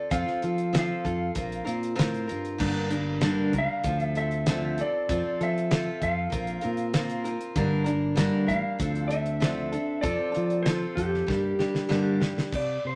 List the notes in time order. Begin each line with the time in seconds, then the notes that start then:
Already playing: C4 F4 A4 D5
0.10 F2 F3 C4 F4 A4 F5, kick, closed hi-hat
0.27 snare
0.42 F3 C4 F4 A4, closed hi-hat
0.58 closed hi-hat
0.73 F3 C4 F4 A4, snare, closed hi-hat
0.79 F5
1.04 F2 C4 F4 A4, kick, closed hi-hat
1.35 A#1 A#3 C4 F4 A#4, kick, closed hi-hat
1.52 closed hi-hat
1.65 A#2 C4 F4 A#4, closed hi-hat
1.83 closed hi-hat
1.95 A2 C4 F4 A#4, snare, closed hi-hat
2.14 closed hi-hat
2.27 C4 F4 A#4, closed hi-hat
2.31 G2
2.45 closed hi-hat
2.58 G1 G2 D3 G3 A#3 D4 A#4, kick, crash
2.90 G3 A#3 D4 A#4, closed hi-hat
3.21 G2 D3 G3 A#3 D4 A#4, snare, closed hi-hat
3.53 C#2 G3 A#3 D4 A#4, kick, closed hi-hat
3.58 F5
3.84 D2 F3 C4 F4 A4, kick, closed hi-hat
4.00 E5, closed hi-hat
4.15 C4 F4 A4 E5, closed hi-hat
4.31 closed hi-hat
4.46 D3 F3 C4 F4 A4, snare, closed hi-hat
4.78 C4 F4 A4 D5, closed hi-hat
5.09 F2 F3 C4 F4 A4, kick, closed hi-hat
5.41 F3 C4 F4 A4 E5, closed hi-hat
5.58 closed hi-hat
5.71 F3 C4 F4 A4, snare, closed hi-hat
6.02 F2 C4 F4 A4 F5, kick, closed hi-hat
6.30 A#1 A#3 C4 F4 A#4, kick, closed hi-hat
6.47 closed hi-hat
6.61 A#2 C4 F4 A#4, closed hi-hat
6.77 closed hi-hat
6.93 A#3 C4 F4 A#4, snare, closed hi-hat
7.10 closed hi-hat
7.24 C4 F4 A#4, closed hi-hat
7.41 closed hi-hat
7.56 G1 G2 D3 G3 A#3 D4 A#4, kick, closed hi-hat
7.84 G3 A#3 D4 A#4, closed hi-hat
8.16 G2 D3 G3 A#3 D4 A#4, snare, closed hi-hat
8.46 A1 G3 A#3 D4 A#4 F5, kick, closed hi-hat
8.79 D2 F3 C4 D4 A4, kick, closed hi-hat
8.95 closed hi-hat
9.08 C4 D4 A4 E5, closed hi-hat
9.26 closed hi-hat
9.40 D3 F3 C4 D4 A4, snare, closed hi-hat
9.72 C4 D4 A4, closed hi-hat
10.01 F2 F3 C4 F4 A4 D5, kick, closed hi-hat
10.32 C4 F4 A4, closed hi-hat
10.36 F3
10.50 closed hi-hat
10.63 F3 C5, snare, closed hi-hat
10.67 C4 F4 A4
10.95 F2 F4 G4 A4, kick, closed hi-hat
11.00 C4
11.14 snare
11.27 G2 G3 A#3 D4 G4, kick, snare
11.59 G3 A#3 D4 G4, snare
11.75 snare
11.89 G2 D3 G3 A#3 D4 G4, snare
12.20 G3 A#3 D4 G4, snare
12.38 snare
12.53 C3 D5, kick, crash
12.85 C3 C5